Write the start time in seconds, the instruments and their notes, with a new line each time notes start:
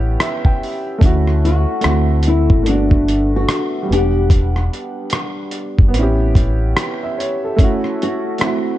Already playing: fingered electric bass A1, upright piano B3 C#4 E4 G4
0.20 upright piano E5, cross-stick, closed hi-hat
0.45 upright piano G5, kick
0.63 open hi-hat
0.98 fingered electric bass D2, upright piano A3 C#4, kick
1.02 upright piano E4 F#4, closed hi-hat
1.27 cross-stick
1.45 nylon-string guitar F#4, closed hi-hat
1.81 fingered electric bass D2, upright piano A3 C4, cross-stick, closed hi-hat
1.86 upright piano E4 F#4
2.23 closed hi-hat
2.28 nylon-string guitar E4
2.50 fingered electric bass A1, kick
2.63 upright piano A3 A#3, closed hi-hat
2.67 fingered electric bass G1, upright piano D4 F#4, nylon-string guitar D4
2.72 upright piano B3
2.91 kick
3.08 closed hi-hat
3.36 nylon-string guitar F#4
3.49 cross-stick, closed hi-hat
3.83 upright piano G3
3.88 fingered electric bass E1, upright piano B3
3.92 upright piano D4, nylon-string guitar G4, closed hi-hat
3.97 upright piano F#5
4.30 kick, closed hi-hat
4.56 cross-stick
4.73 closed hi-hat
5.10 cross-stick, closed hi-hat
5.51 closed hi-hat
5.79 fingered electric bass F#1, kick
5.88 upright piano B3
5.93 fingered electric bass A1, upright piano C4, closed hi-hat
5.98 upright piano C#4 E4
6.03 upright piano G4
6.35 kick, closed hi-hat
6.77 cross-stick, closed hi-hat
7.03 upright piano E5
7.18 upright piano C#5, closed hi-hat
7.44 upright piano A4
7.56 upright piano A3 C#4, kick, closed hi-hat
7.61 upright piano E4 F#4
7.84 cross-stick
8.02 nylon-string guitar F#4, closed hi-hat
8.38 upright piano A3 C4, cross-stick, closed hi-hat
8.44 upright piano E4 F#4